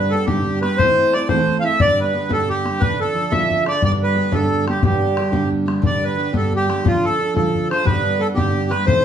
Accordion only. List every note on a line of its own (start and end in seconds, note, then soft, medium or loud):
0.00 0.12 B4 medium
0.10 0.26 A4 medium
0.26 0.59 G4 medium
0.62 0.79 B4 loud
0.77 1.14 C5 loud
1.13 1.28 D5 loud
1.29 1.58 C5 medium
1.60 1.64 F5 medium
1.64 1.81 E5 loud
1.81 2.00 D5 loud
2.00 2.32 B4 medium
2.32 2.49 A4 medium
2.49 2.82 G4 medium
2.81 3.00 B4 loud
3.01 3.33 A4 medium
3.32 3.64 E5 loud
3.68 3.83 D5 loud
3.84 3.92 D5 loud
4.03 4.35 B4 medium
4.33 4.65 A4 medium
4.69 4.83 G4 medium
4.85 5.49 G4 medium
5.86 6.04 D5 medium
6.04 6.33 B4 medium
6.37 6.53 A4 medium
6.56 6.87 G4 medium
6.87 7.05 F4 medium
7.05 7.34 A4 medium
7.36 7.68 A4 medium
7.71 7.85 C5 loud
7.85 8.22 B4 loud
8.20 8.27 A4 medium
8.35 8.72 G4 medium
8.70 8.86 B4 loud
8.86 9.05 C5 loud